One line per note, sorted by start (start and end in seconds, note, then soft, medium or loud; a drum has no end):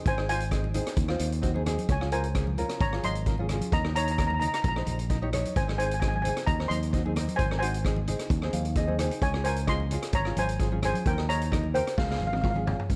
0.06 0.79 G#1 medium
0.06 0.29 C5 medium
0.06 0.28 G#5 loud
0.06 kick loud
0.06 closed hi-hat medium
0.18 0.25 C4 medium
0.18 0.25 D#4 medium
0.18 0.25 G#4 medium
0.18 cross-stick medium
0.29 0.43 C4 medium
0.29 0.43 D#4 medium
0.29 0.43 F4 medium
0.29 1.17 C5 medium
0.29 1.17 G#5 loud
0.29 closed hi-hat medium
0.40 closed hi-hat medium
0.51 0.66 C4 medium
0.51 0.66 D#4 medium
0.51 0.66 G#4 medium
0.51 kick medium
0.51 cross-stick medium
0.51 closed hi-hat medium
0.64 high conga medium
0.74 0.95 C4 medium
0.74 0.95 D#4 medium
0.74 0.95 G#4 medium
0.74 closed hi-hat medium
0.74 low conga medium
0.87 cross-stick medium
0.87 closed hi-hat medium
0.97 1.15 D#2 medium
0.97 kick loud
0.97 closed hi-hat medium
1.08 1.30 C4 medium
1.08 1.30 D#4 medium
1.08 1.30 F4 medium
1.08 cross-stick medium
1.19 1.75 D#2 medium
1.19 closed hi-hat medium
1.32 closed hi-hat medium
1.42 1.50 C4 medium
1.42 1.50 D#4 medium
1.42 1.50 F#4 medium
1.42 kick medium
1.42 closed hi-hat medium
1.54 1.61 C4 medium
1.54 1.61 D#4 medium
1.54 1.61 G#4 medium
1.54 high conga medium
1.66 1.87 C4 medium
1.66 1.87 D#4 medium
1.66 1.87 G#4 loud
1.66 cross-stick medium
1.66 closed hi-hat medium
1.66 low conga medium
1.78 closed hi-hat medium
1.78 high conga medium
1.89 2.63 C#2 medium
1.89 2.11 C#5 medium
1.89 2.11 G#5 medium
1.89 kick loud
1.89 closed hi-hat medium
2.01 2.08 C#4 medium
2.01 2.08 F4 medium
2.01 2.08 G#4 medium
2.01 cross-stick medium
2.12 2.26 C#4 medium
2.12 2.26 F4 medium
2.12 2.26 A#4 medium
2.12 2.77 C5 medium
2.12 2.77 G#5 medium
2.12 closed hi-hat medium
2.24 closed hi-hat medium
2.35 2.49 C#4 medium
2.35 2.49 F4 medium
2.35 2.49 G#4 medium
2.35 kick medium
2.35 cross-stick medium
2.35 closed hi-hat medium
2.47 high conga medium
2.58 2.79 C#4 medium
2.58 2.79 F4 medium
2.58 2.79 A#4 medium
2.58 closed hi-hat medium
2.58 low conga medium
2.69 cross-stick medium
2.69 closed hi-hat medium
2.80 2.99 G#1 medium
2.80 3.02 C#5 medium
2.80 3.05 A#5 medium
2.80 kick loud
2.80 closed hi-hat medium
2.93 3.13 C#4 medium
2.93 3.14 F4 medium
2.93 3.13 G#4 medium
2.93 cross-stick medium
3.03 3.59 G#1 medium
3.03 3.47 D#5 medium
3.03 3.47 C6 medium
3.03 closed hi-hat medium
3.03 high conga medium
3.15 closed hi-hat medium
3.26 3.34 C#4 medium
3.26 3.34 F4 medium
3.26 3.34 A#4 medium
3.26 kick medium
3.26 closed hi-hat medium
3.38 3.45 C#4 medium
3.38 3.45 F4 medium
3.38 3.46 G#4 medium
3.38 high conga medium
3.49 3.71 C#4 medium
3.49 3.71 F4 medium
3.49 3.71 G#4 medium
3.49 cross-stick medium
3.49 closed hi-hat medium
3.49 low conga medium
3.61 closed hi-hat medium
3.61 high conga medium
3.72 4.46 D#2 medium
3.72 3.83 D#5 medium
3.72 3.83 A#5 medium
3.72 kick loud
3.72 closed hi-hat medium
3.84 3.91 D#4 medium
3.84 3.91 G4 medium
3.84 3.92 A#4 medium
3.84 cross-stick medium
3.95 4.09 D#4 medium
3.95 4.10 G4 medium
3.95 4.10 C#5 medium
3.95 4.04 C#5 medium
3.95 4.03 A#5 loud
3.95 closed hi-hat medium
4.04 4.10 A#5 medium
4.04 closed hi-hat medium
4.11 4.18 A#5 medium
4.18 4.32 D#4 medium
4.18 4.33 G4 medium
4.18 4.32 A#4 medium
4.18 4.26 A#5 medium
4.18 kick medium
4.18 cross-stick medium
4.18 closed hi-hat medium
4.27 4.33 A#5 medium
4.27 high conga medium
4.34 4.39 A#5 medium
4.40 4.62 D#4 medium
4.40 4.62 G4 medium
4.40 4.62 A#4 medium
4.40 4.47 A#5 medium
4.40 closed hi-hat medium
4.40 low conga medium
4.48 4.53 A#5 medium
4.54 4.61 A#5 medium
4.54 cross-stick medium
4.54 closed hi-hat medium
4.62 4.83 A#1 loud
4.62 4.67 A#5 medium
4.62 kick loud
4.62 closed hi-hat medium
4.69 4.77 A#5 medium
4.76 4.97 D#4 medium
4.76 4.97 G4 medium
4.76 4.97 C5 medium
4.76 cross-stick medium
4.86 5.42 A#1 medium
4.86 closed hi-hat medium
4.86 high conga medium
4.86 low conga medium
4.99 closed hi-hat medium
5.09 5.17 D#4 medium
5.09 5.17 G4 medium
5.09 5.17 A#4 medium
5.09 kick medium
5.09 closed hi-hat medium
5.22 5.28 D#4 medium
5.22 5.29 G4 medium
5.22 5.29 C#5 medium
5.22 high conga medium
5.33 5.54 D#4 medium
5.33 5.53 G4 medium
5.33 5.54 C#5 loud
5.33 cross-stick medium
5.33 closed hi-hat medium
5.33 low conga medium
5.45 closed hi-hat medium
5.45 high conga medium
5.56 6.30 G#1 medium
5.56 5.67 C5 medium
5.56 5.67 G#5 medium
5.56 kick loud
5.56 closed hi-hat medium
5.67 5.74 C4 medium
5.67 5.74 D#4 medium
5.67 5.74 G#4 medium
5.67 cross-stick medium
5.78 5.92 C4 medium
5.78 5.92 D#4 medium
5.78 5.92 G#4 medium
5.78 5.86 C5 medium
5.78 5.85 G#5 medium
5.78 closed hi-hat medium
5.86 5.93 G#5 medium
5.91 5.99 G#5 medium
5.91 closed hi-hat medium
6.00 6.16 C4 medium
6.00 6.16 D#4 medium
6.00 6.16 G#4 medium
6.00 6.07 G#5 medium
6.00 kick medium
6.00 cross-stick medium
6.00 closed hi-hat medium
6.08 6.15 G#5 medium
6.14 6.21 G#5 medium
6.14 high conga medium
6.22 6.45 C4 medium
6.22 6.45 D#4 medium
6.22 6.45 G#4 medium
6.22 6.28 G#5 medium
6.22 closed hi-hat medium
6.22 low conga medium
6.29 6.37 G#5 medium
6.37 cross-stick medium
6.37 closed hi-hat medium
6.47 6.66 D#2 medium
6.47 6.68 D#5 medium
6.47 6.68 A#5 medium
6.47 kick loud
6.47 closed hi-hat medium
6.59 6.79 C4 medium
6.59 6.80 D#4 medium
6.59 6.80 A#4 medium
6.59 cross-stick medium
6.68 7.25 D#2 medium
6.68 7.12 D#5 medium
6.68 7.12 C6 loud
6.68 closed hi-hat medium
6.68 high conga medium
6.83 closed hi-hat medium
6.93 7.00 C4 medium
6.93 7.00 D#4 medium
6.93 7.00 F#4 medium
6.93 kick medium
6.93 closed hi-hat medium
7.05 7.12 C4 medium
7.05 7.12 D#4 medium
7.05 7.12 G#4 medium
7.05 high conga medium
7.16 7.37 C4 medium
7.16 7.37 D#4 medium
7.16 7.37 A#4 medium
7.16 cross-stick medium
7.16 closed hi-hat medium
7.16 low conga medium
7.28 closed hi-hat medium
7.28 high conga medium
7.36 8.13 G#1 medium
7.36 7.59 C5 medium
7.36 7.58 G#5 loud
7.36 kick loud
7.36 closed hi-hat medium
7.50 7.57 C4 medium
7.50 7.57 D#4 medium
7.50 7.57 A#4 medium
7.50 cross-stick medium
7.59 7.76 C4 medium
7.59 7.76 D#4 medium
7.59 7.76 F#4 medium
7.59 8.49 C5 medium
7.59 8.48 G#5 loud
7.59 closed hi-hat medium
7.74 closed hi-hat medium
7.85 7.99 C4 medium
7.85 7.99 D#4 medium
7.85 7.99 G#4 medium
7.85 kick medium
7.85 cross-stick medium
7.85 closed hi-hat medium
7.96 high conga medium
8.08 8.29 C4 medium
8.08 8.28 D#4 medium
8.08 8.29 G#4 medium
8.08 closed hi-hat medium
8.08 low conga medium
8.19 cross-stick medium
8.19 closed hi-hat medium
8.30 8.49 D#2 loud
8.30 kick loud
8.30 closed hi-hat medium
8.42 8.63 C4 medium
8.42 8.63 D#4 medium
8.42 8.63 G#4 medium
8.42 cross-stick medium
8.53 9.09 D#2 medium
8.53 8.75 F5 medium
8.53 closed hi-hat loud
8.53 high conga medium
8.65 closed hi-hat medium
8.75 8.84 C4 medium
8.75 8.84 D#4 medium
8.75 8.84 G#4 medium
8.75 8.98 D#5 medium
8.75 kick medium
8.75 closed hi-hat medium
8.87 8.94 C4 medium
8.87 8.94 D#4 medium
8.87 8.95 G#4 loud
8.87 high conga medium
8.99 9.20 C4 medium
8.99 9.20 D#4 medium
8.99 9.20 G#4 medium
8.99 9.21 C5 medium
8.99 cross-stick medium
8.99 closed hi-hat medium
8.99 low conga medium
9.11 closed hi-hat medium
9.22 9.96 C#2 medium
9.22 9.44 C#5 medium
9.22 9.44 G#5 medium
9.22 kick loud
9.22 closed hi-hat medium
9.34 9.41 C#4 medium
9.34 9.41 F4 medium
9.34 9.41 G#4 medium
9.34 cross-stick medium
9.44 9.60 C#4 medium
9.44 9.59 F4 medium
9.44 9.60 A#4 medium
9.44 9.66 C5 medium
9.44 9.69 G#5 medium
9.44 closed hi-hat medium
9.56 closed hi-hat medium
9.67 9.82 C#4 medium
9.67 9.83 F4 medium
9.67 9.83 G#4 medium
9.67 10.10 D#5 medium
9.67 10.16 C6 loud
9.67 kick medium
9.67 cross-stick medium
9.67 closed hi-hat medium
9.80 high conga medium
9.91 10.12 C#4 medium
9.91 10.13 F4 medium
9.91 10.12 G#4 medium
9.91 closed hi-hat medium
9.91 low conga medium
10.02 cross-stick medium
10.02 closed hi-hat medium
10.13 10.32 G#1 loud
10.13 10.36 C#5 medium
10.13 10.36 A#5 medium
10.13 kick loud
10.13 closed hi-hat medium
10.25 10.47 C#4 medium
10.25 10.47 F4 medium
10.25 10.47 G#4 medium
10.25 cross-stick medium
10.37 10.92 G#1 medium
10.37 10.81 C5 medium
10.37 10.81 G#5 loud
10.37 closed hi-hat medium
10.37 high conga medium
10.49 closed hi-hat medium
10.60 10.67 C#4 medium
10.60 10.67 F4 medium
10.60 10.67 G#4 medium
10.60 kick medium
10.60 closed hi-hat medium
10.72 10.78 C#4 medium
10.72 10.78 F4 medium
10.72 10.79 G#4 medium
10.72 high conga medium
10.82 11.03 C#4 medium
10.82 11.04 F4 medium
10.82 11.04 G#4 medium
10.82 11.06 C5 medium
10.82 11.08 G#5 medium
10.82 cross-stick medium
10.82 closed hi-hat medium
10.82 low conga medium
10.94 closed hi-hat medium
10.94 high conga medium
11.06 11.80 D#2 medium
11.06 11.28 A#4 medium
11.06 11.30 G5 medium
11.06 kick loud
11.06 closed hi-hat medium
11.17 11.24 D#4 medium
11.17 11.24 G4 medium
11.17 11.24 A#4 medium
11.17 cross-stick medium
11.29 11.43 D#4 medium
11.29 11.43 G4 medium
11.29 11.43 A#4 medium
11.29 11.72 C#5 medium
11.29 11.76 A#5 loud
11.29 closed hi-hat medium
11.41 closed hi-hat medium
11.51 11.66 D#4 medium
11.51 11.66 G4 medium
11.51 11.66 A#4 medium
11.51 kick medium
11.51 cross-stick medium
11.51 closed hi-hat medium
11.63 high conga medium
11.74 11.95 D#4 medium
11.74 11.95 G4 medium
11.74 11.96 A#4 medium
11.74 11.95 C5 medium
11.74 11.96 G5 medium
11.74 closed hi-hat medium
11.74 low conga medium
11.87 cross-stick medium
11.87 closed hi-hat medium
11.98 12.16 C#2 loud
11.98 12.05 G#4 medium
11.98 12.03 F5 medium
11.98 kick loud
11.98 snare medium
12.04 12.10 F5 soft
12.09 12.30 C#4 medium
12.09 12.30 F4 medium
12.09 12.30 G#4 medium
12.09 12.17 F5 medium
12.09 snare medium
12.18 12.75 G#1 medium
12.18 12.26 F5 medium
12.18 high conga medium
12.18 low conga medium
12.27 12.33 F5 medium
12.33 12.40 F5 soft
12.33 high tom medium
12.42 12.51 C#4 medium
12.42 12.51 F4 medium
12.42 12.51 A#4 medium
12.42 12.49 F5 medium
12.42 kick medium
12.42 mid tom medium
12.50 12.58 F5 medium
12.55 12.62 C#4 medium
12.55 12.62 F4 medium
12.55 12.62 G#4 medium
12.55 high conga medium
12.65 12.87 C#4 medium
12.65 12.87 F4 medium
12.65 12.87 G#4 medium
12.65 floor tom loud
12.65 low conga medium
12.79 floor tom medium
12.90 12.96 C#2 medium
12.90 kick loud
12.90 closed hi-hat medium